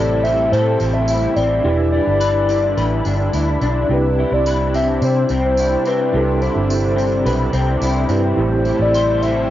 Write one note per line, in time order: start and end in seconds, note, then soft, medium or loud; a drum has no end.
0.00 0.49 A1 medium
0.00 1.64 A2 medium
0.00 1.61 C3 medium
0.00 1.62 G3 medium
0.00 1.62 A3 medium
0.00 1.60 C4 medium
0.00 1.09 E4 medium
0.00 1.60 E4 medium
0.00 8.34 E4 medium
0.00 1.61 G4 medium
0.00 0.51 A4 medium
0.00 1.62 C5 medium
0.00 0.25 D5 loud
0.23 0.80 C4 medium
0.23 0.51 E5 loud
0.23 tambourine soft
0.52 0.75 A2 loud
0.52 1.70 A4 medium
0.52 0.95 C5 loud
0.52 tambourine medium
0.80 1.25 A1 medium
0.80 1.36 C4 medium
0.80 tambourine soft
0.93 1.37 E5 loud
1.08 1.92 E4 medium
1.08 tambourine medium
1.36 1.59 A1 medium
1.36 1.71 C4 medium
1.36 1.92 D5 loud
1.36 tambourine soft
1.62 1.98 E1 loud
1.62 3.87 D3 medium
1.62 5.14 E3 medium
1.62 3.87 G3 medium
1.62 3.84 D4 medium
1.62 8.34 D4 medium
1.62 3.84 E4 medium
1.62 3.85 G4 medium
1.67 3.86 B4 medium
1.92 3.33 E4 medium
1.92 3.01 D5 medium
2.07 2.74 G1 medium
2.20 2.77 B4 medium
2.20 tambourine medium
2.49 3.05 D4 medium
2.49 tambourine soft
2.77 3.00 A1 loud
2.77 4.46 B4 medium
2.77 tambourine medium
3.05 3.28 G1 loud
3.05 3.61 D4 medium
3.05 tambourine soft
3.33 3.56 D2 medium
3.33 4.18 E4 medium
3.33 tambourine medium
3.61 3.84 B1 medium
3.61 3.95 D4 medium
3.61 tambourine soft
3.87 4.23 C2 loud
3.87 6.13 C3 medium
3.87 9.50 C3 medium
3.87 8.34 G3 medium
3.87 6.08 D4 medium
3.87 6.09 E4 medium
3.87 6.10 G4 medium
3.92 4.35 B4 medium
4.18 5.58 E4 medium
4.32 4.98 C2 medium
4.32 4.74 D5 loud
4.46 5.02 B4 medium
4.46 tambourine medium
4.74 5.30 C4 medium
4.74 4.87 E5 loud
4.74 tambourine soft
5.02 5.24 C3 loud
5.02 5.41 C5 loud
5.02 tambourine medium
5.29 5.74 C2 loud
5.29 5.86 C4 medium
5.29 tambourine medium
5.45 5.89 C5 loud
5.57 6.42 E4 medium
5.57 tambourine medium
5.85 6.96 C4 medium
5.85 6.41 B4 loud
5.85 tambourine soft
6.11 6.47 C2 loud
6.11 8.38 C3 medium
6.11 8.04 D4 medium
6.11 8.05 E4 medium
6.11 8.06 G4 medium
6.16 8.07 A4 medium
6.42 7.82 E4 medium
6.42 7.50 C5 medium
6.42 tambourine soft
6.56 7.22 G1 medium
6.70 tambourine medium
6.96 7.53 C4 medium
6.96 tambourine soft
7.25 7.48 B1 medium
7.25 8.43 B4 medium
7.25 tambourine medium
7.53 7.76 C2 loud
7.53 8.09 C4 medium
7.53 tambourine soft
7.81 8.04 C2 medium
7.81 8.65 E4 medium
7.81 tambourine medium
8.09 8.31 G2 medium
8.09 9.23 C4 medium
8.09 8.37 D4 medium
8.09 8.36 E4 medium
8.09 8.38 G4 medium
8.09 8.39 B4 medium
8.09 tambourine soft
8.35 8.71 A1 loud
8.35 9.50 A2 medium
8.35 9.50 G3 medium
8.35 9.50 A3 medium
8.35 9.50 C4 medium
8.35 9.50 E4 medium
8.35 9.50 G4 medium
8.40 8.83 C5 loud
8.40 9.50 C5 medium
8.65 9.50 E4 medium
8.65 tambourine soft
8.79 9.46 A1 medium
8.79 9.22 D5 loud
8.94 9.50 C5 medium
8.94 tambourine medium
9.22 9.50 C4 medium
9.22 9.48 E5 loud
9.22 tambourine soft